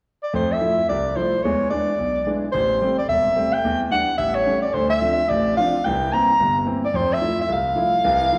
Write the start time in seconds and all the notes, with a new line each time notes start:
0.23 D5
0.34 F2 A3 C5
0.52 E5
0.61 F3 A3 E4
0.89 C2 D5
1.16 F3 A3 E4 C5
1.43 E2 G#3 C#5
1.70 E3 G#3 D4 D5
1.99 B1
2.26 E3 G#3 D4
2.52 A1 C5
2.81 G3 A3 C4
2.98 D5
3.08 E1 E5
3.36 G3 A3 C4
3.53 G5
3.65 E2
3.91 E3 G3 D4 F#5
4.18 A1 E5
4.35 C#5
4.46 G3 A3 C#4
4.62 D5
4.73 D2 D3 C5
4.90 E5
5.02 F3 C4 D4
5.29 A1 A2 D5
5.57 F3 C4 D4 F5
5.84 C2 E3 G5
6.12 E3 A#3 C4 A#5
6.40 G1 G2
6.65 E3 A#3 C4
6.85 D5
6.94 F2 C5
7.13 E5
7.22 F3 A3 E4
7.41 E5
7.49 C2 F5
7.76 F3 A3 E4
8.04 C2 E3
8.32 F3 A3 E4